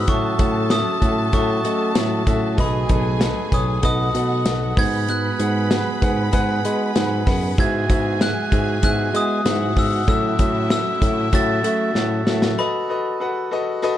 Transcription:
Already playing: upright piano F#4 G#4 E5 F#5
0.07 steel-string acoustic guitar A2 E3 F#3 A3 C#4 F#4, tine electric piano A2, upright piano A2 F#4 A4 E5, violin section A4 A5, glockenspiel C#6, kick, closed hi-hat
0.38 tine electric piano A2, upright piano F#4 A4 E5, kick, closed hi-hat
0.70 steel-string acoustic guitar F#3 A3 C#4 F#4, upright piano F#4 A4 E5, glockenspiel D#6, snare, closed hi-hat
1.01 tine electric piano A2, upright piano F#4 A4 E5, kick, closed hi-hat
1.32 tine electric piano A2, steel-string acoustic guitar F#3 A3 C#4 F#4, upright piano F#4 A4 E5, glockenspiel C#6, kick, closed hi-hat
1.64 steel-string acoustic guitar F#3 A3 C#4 F#4, tine electric piano A3, upright piano F#4 A4 D#5, closed hi-hat
1.95 tine electric piano A2, steel-string acoustic guitar F#3 A3 C#4 F#4, upright piano F#4 A4 E5, snare, closed hi-hat
2.26 tine electric piano A2, steel-string acoustic guitar F#3 A3 C#4 F#4, upright piano F#4 A4 E5, kick, closed hi-hat
2.58 tine electric piano B1, steel-string acoustic guitar B2 D#3 F#3 A3 D#4 F#4, violin section G#4 G#5, upright piano A4 B4 D#5, glockenspiel B5, kick, closed hi-hat
2.89 tine electric piano B1, upright piano A4 B4 D#5, kick, closed hi-hat
3.19 steel-string acoustic guitar F#3 A3 D#4 F#4, upright piano A4 B4 D#5, snare, closed hi-hat
3.52 tine electric piano B1, upright piano A4 B4 C#5, glockenspiel D#6, kick, closed hi-hat
3.82 tine electric piano B1, steel-string acoustic guitar F#3 A3 D#4 F#4, violin section F#4 F#5, upright piano A4 B4 D#5, glockenspiel D#6, kick, closed hi-hat
4.14 tine electric piano B2, steel-string acoustic guitar F#3 A3 D#4 F#4, upright piano A4 B4 D#5, closed hi-hat
4.45 tine electric piano B1, steel-string acoustic guitar F#3 A3 D#4 F#4, upright piano A4 B4 D#5, snare, closed hi-hat
4.77 tine electric piano G#2, steel-string acoustic guitar B3 D#4 F#4, upright piano G#4 B4 F#5, violin section B4 B5, glockenspiel G#6, kick, snare, open hi-hat
5.08 steel-string acoustic guitar G#3 B3 D#4 F#4, glockenspiel F#6, closed hi-hat
5.39 tine electric piano G#2, upright piano G#4 B4 F#5, closed hi-hat
5.70 steel-string acoustic guitar G#3 B3 D#4 F#4, upright piano G#4 B4 F#5, snare, closed hi-hat
6.01 tine electric piano G#2, upright piano G#4 B4 F#5, kick, closed hi-hat
6.32 tine electric piano G#2, steel-string acoustic guitar G#3 B3 D#4 F#4, upright piano G#4 B4 F#5, kick, closed hi-hat
6.64 tine electric piano G#3, steel-string acoustic guitar B3 D#4 F#4, upright piano G#4 B4 F#5, closed hi-hat
6.95 tine electric piano G#2, steel-string acoustic guitar G#3 B3 D#4 F#4, upright piano G#4 B4 F#5, snare, closed hi-hat
7.26 tine electric piano F#2, steel-string acoustic guitar B3 D#4 F#4, upright piano G#4 B4 F#5, kick, snare, open hi-hat
7.57 upright piano G#2 F#4 G#4 E5, tine electric piano G#2, steel-string acoustic guitar G#3 B3 E4 F#4, violin section G#4 G#5, glockenspiel G#6, kick, closed hi-hat
7.89 tine electric piano G#2, upright piano F#4 G#4 E5, kick, closed hi-hat
8.19 steel-string acoustic guitar G#3 B3 E4 F#4, upright piano F#4 G#4 E5, glockenspiel F#6, snare, closed hi-hat
8.52 tine electric piano G#2, upright piano F#4 G#4 E5, kick, closed hi-hat
8.82 tine electric piano G#2, steel-string acoustic guitar G#3 B3 E4 F#4, upright piano F#4 G#4 E5, glockenspiel F#6, kick, closed hi-hat
9.13 tine electric piano G#3, steel-string acoustic guitar B3 E4 F#4, upright piano F#4 G#4 E5, glockenspiel D#6, closed hi-hat
9.44 tine electric piano G#2, steel-string acoustic guitar G#3 B3 E4 F#4, upright piano F#4 G#4 E5, violin section F#4 F#5, snare, closed hi-hat
9.75 tine electric piano G#2, steel-string acoustic guitar B3 E4 F#4, upright piano F#4 G#4 E5, glockenspiel E6, kick, snare, open hi-hat
10.07 steel-string acoustic guitar A2 E3 F#3 A3 C#4 F#4, tine electric piano A2, upright piano A2 F#4 A4 E5, violin section E4 E5, glockenspiel E6, kick, closed hi-hat
10.39 tine electric piano A2, upright piano F#4 A4 E5, kick, closed hi-hat
10.69 steel-string acoustic guitar F#3 A3 C#4 F#4, upright piano F#4 A4 E5, glockenspiel E6, snare, closed hi-hat
11.01 tine electric piano A2, upright piano F#4 A4 E5, kick, closed hi-hat
11.32 tine electric piano A2, steel-string acoustic guitar F#3 A3 C#4 F#4, upright piano F#4 A4 E5, glockenspiel A6, kick, closed hi-hat
11.63 steel-string acoustic guitar F#3 A3 C#4 F#4, tine electric piano A3, upright piano F#4 A4 E5, closed hi-hat
11.93 tine electric piano A2, steel-string acoustic guitar F#3 A3 C#4 F#4, upright piano F#4 A4 E5, snare
12.25 tine electric piano A2, steel-string acoustic guitar F#3 A3 C#4 F#4, upright piano F#4 A4 E5, snare
12.42 snare
12.58 upright piano F#4 A4 B4 D#5, glockenspiel B5
12.89 upright piano F#4 A4 B4 D#5
13.20 upright piano F#4 A4 B4 F#5
13.51 upright piano F#4 A4 B4 D#5
13.82 upright piano F#4 A4 B4 D#5

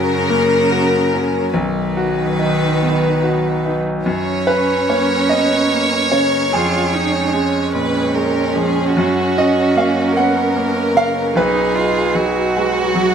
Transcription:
Already playing: grand piano F#2 C#4 F#4, cello C#3, ambient pad F#3 C#4 A#4, violin section A#4
0.30 grand piano A#3
0.71 grand piano F#4
1.14 grand piano C#4
1.54 grand piano B1, cello D#3, ambient pad D#4 B4, violin section B4
1.97 grand piano F#4
2.39 grand piano D#4
2.82 grand piano B3
3.23 grand piano F#4
3.66 grand piano D#4
4.06 grand piano F#2, ambient pad F#3 C#4 A#5, cello C#4, violin section C#5
4.47 grand piano C#4 B4
4.89 grand piano A#3 C#5
5.29 grand piano B3 D#5
5.72 grand piano A#3
6.12 grand piano C#3 C#5
6.49 ambient pad G#3 C#5, cello F4, grand piano G#4
6.53 grand piano F2
6.93 grand piano C#4, cello D#4
7.34 grand piano G#3, cello C#4
7.74 grand piano A#2, violin section B4
8.15 grand piano G#3, violin section A#4
8.55 grand piano F3, violin section G#4
8.96 grand piano F#2, ambient pad C#4 A#4, violin section F#4
9.38 grand piano C#4 D#5
9.76 grand piano A#3 F5
10.16 grand piano B3 F#5, violin section A#4
10.56 grand piano A#3
10.95 grand piano C#3 F5
11.35 grand piano B1 B4, ambient pad F#3 D#4 B4, cello D#4, violin section G#4
11.75 grand piano D#4, cello F4
12.15 grand piano F#3, cello F#4
12.55 grand piano G#3, violin section F#4
12.95 grand piano F#3

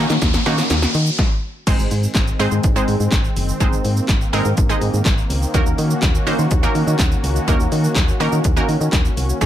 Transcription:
Already playing: analog synth pad D#3 A#3 C#4 F#4, synth pluck A#3 C#4 D#4 F#4, riser
0.10 fm bass D#3, snare, shaker
0.22 fm bass D#2, kick, snare, closed hi-hat, shaker
0.34 snare, shaker
0.46 fm bass D#3, synth pluck A#3 C#4 D#4 F#4, snare, open hi-hat, shaker
0.58 snare, shaker
0.70 fm bass D#2, snare, closed hi-hat, shaker
0.82 snare, shaker
0.94 fm bass D#3, open hi-hat, shaker
1.07 shaker
1.19 kick, snare
1.67 fm bass G#1, analog synth pad D#3 G#3 C4, synth pluck G#3 C4 D#4 G#4 C5, kick, closed hi-hat, crash, shaker
1.79 fm bass G#1, shaker
1.91 fm bass G#2, open hi-hat, shaker
2.03 shaker
2.14 fm bass G#1, kick, snare, clap, closed hi-hat, shaker
2.28 shaker
2.39 fm bass G#2, synth pluck G#3 C4 D#4 G#4 C5, open hi-hat, shaker
2.51 fm bass G#2, shaker
2.63 fm bass G#1, kick, closed hi-hat, shaker
2.76 synth pluck G#3 C4 D#4 G#4 C5, shaker
2.88 fm bass G#2, open hi-hat, shaker
3.00 fm bass G#2, shaker
3.11 fm bass G#1, kick, snare, clap, closed hi-hat, shaker
3.24 shaker
3.36 fm bass F#1, open hi-hat, shaker
3.49 shaker
3.60 fm bass G#1, synth pluck G#3 C4 D#4 G#4 C5, analog synth pad A#3, kick, closed hi-hat, shaker
3.73 fm bass G#1, shaker
3.85 fm bass G#2, open hi-hat, shaker
3.97 shaker
4.08 fm bass G#1, kick, snare, clap, closed hi-hat, shaker
4.21 shaker
4.33 fm bass G#2, synth pluck G#3 C4 D#4 G#4 A#4, open hi-hat, shaker
4.45 fm bass G#2, shaker
4.57 fm bass G#1, kick, closed hi-hat, shaker
4.69 synth pluck G#3 C4 D#4 G#4 D#5, shaker
4.81 fm bass G#2, open hi-hat, shaker
4.94 fm bass G#2, shaker
5.05 fm bass G#1, kick, snare, clap, closed hi-hat, shaker
5.18 shaker
5.30 fm bass C#2, open hi-hat, shaker
5.42 shaker
5.54 fm bass D#2, synth pluck A#3 C#4 D#4 F#4 A#4, analog synth pad C#4 F#4, kick, closed hi-hat, shaker
5.66 fm bass D#2, shaker
5.78 fm bass D#3, open hi-hat, shaker
5.90 shaker
6.02 fm bass D#2, kick, snare, clap, closed hi-hat, shaker
6.15 shaker
6.27 fm bass D#3, synth pluck A#3 C#4 D#4 F#4 C5, open hi-hat, shaker
6.39 fm bass D#3, shaker
6.51 fm bass D#2, kick, closed hi-hat, shaker
6.63 synth pluck A#3 C#4 D#4 F#4 A#4, shaker
6.75 fm bass D#3, open hi-hat, shaker
6.87 fm bass D#3, shaker
6.99 fm bass D#2, kick, snare, clap, closed hi-hat, shaker
7.12 shaker
7.23 fm bass C#2, open hi-hat, shaker
7.36 shaker
7.48 fm bass D#2, synth pluck A#3 C#4 D#4 F#4 A#4, kick, closed hi-hat, shaker
7.60 fm bass D#2, shaker
7.72 fm bass D#3, open hi-hat, shaker
7.84 shaker
7.95 fm bass D#2, kick, snare, clap, closed hi-hat, shaker
8.08 shaker
8.20 fm bass D#3, synth pluck A#3 C#4 D#4 F#4 A#4, open hi-hat, shaker
8.32 fm bass D#3, shaker
8.44 fm bass D#2, kick, closed hi-hat, shaker
8.56 synth pluck A#3 C#4 D#4 F#4 A#4, shaker
8.69 fm bass D#3, open hi-hat, shaker
8.81 fm bass D#3, shaker
8.92 fm bass D#2, kick, snare, clap, closed hi-hat, shaker
9.05 shaker
9.17 fm bass C2, open hi-hat, shaker
9.29 shaker
9.41 fm bass C#2, analog synth pad C#3 D#4 G#4, synth pluck G#3 C#4 D#4 G#4 C#5, kick, closed hi-hat, shaker

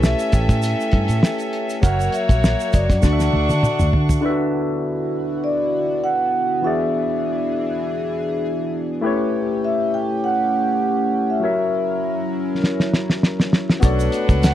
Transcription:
Already playing: fingered electric bass B1, tine electric piano A3 E4 G4 B4 C#5, violin section C#4 A4 E5
0.03 vibraphone E5, snare, shaker
0.19 closed hi-hat, shaker
0.32 fingered electric bass A1, vibraphone G5, kick, closed hi-hat, shaker
0.49 fingered electric bass A2, kick, snare, closed hi-hat, shaker
0.62 closed hi-hat, shaker
0.81 shaker
0.92 fingered electric bass G2, kick, closed hi-hat
1.08 fingered electric bass A2, closed hi-hat, shaker
1.23 snare, shaker
1.38 closed hi-hat, shaker
1.53 closed hi-hat
1.70 closed hi-hat, shaker
1.81 fingered electric bass F#1, tine electric piano F#3 F#4 A#4, violin section A#3 F#4 C#5, vibraphone F#5, kick, closed hi-hat, shaker
1.86 tine electric piano E5
1.99 closed hi-hat, shaker
2.12 vibraphone E5, closed hi-hat, shaker
2.29 fingered electric bass A#1, kick, closed hi-hat, shaker
2.44 snare, shaker
2.60 shaker
2.73 fingered electric bass F#1, vibraphone D5, kick, closed hi-hat, shaker
2.90 fingered electric bass F#2, kick, snare, closed hi-hat, shaker
3.02 fingered electric bass D2, tine electric piano D3 D4 F#4 D5, violin section D4 F#5 C#6, kick, snare, shaker
3.13 tine electric piano E5
3.20 snare, shaker
3.33 fingered electric bass D2, high tom
3.49 fingered electric bass D3, high tom, shaker
3.63 muted fingered electric bass stroke, mid tom, shaker
3.79 fingered electric bass D2, mid tom, shaker
3.93 fingered electric bass D3, floor tom
4.09 floor tom, shaker
4.21 tine electric piano D3 D4 E4 B4, analog synth pad D3 B3 E4 F#4
4.26 tine electric piano E5
4.30 tine electric piano F#4
5.44 vibraphone D5
6.04 vibraphone F#5
6.62 tine electric piano E3 E4 F#4 G#4, analog synth pad E3 D4 G#4, vibraphone E5
6.67 tine electric piano D5
9.01 tine electric piano A3 E4 G4 B4, analog synth pad A3 C#4 G4
9.06 tine electric piano C#5
9.64 vibraphone E5
9.94 vibraphone G5
10.24 vibraphone F#5
11.30 vibraphone E5
11.40 tine electric piano F#3 F#4 A#4, analog synth pad F#3 E4 A#4
11.44 tine electric piano C#5 E5
12.64 snare
12.80 snare
12.94 snare
13.10 snare
13.23 snare
13.40 snare
13.53 snare
13.69 snare
13.80 fingered electric bass B1, analog synth pad A3 B3 D4, tine electric piano B3 F#4 A4 C#5, violin section D4 B4 F#5, kick, closed hi-hat, shaker
13.85 tine electric piano D5
13.99 closed hi-hat, shaker
14.12 closed hi-hat, shaker
14.29 fingered electric bass C#2, kick, closed hi-hat, shaker
14.43 vibraphone F#5, snare, closed hi-hat, shaker

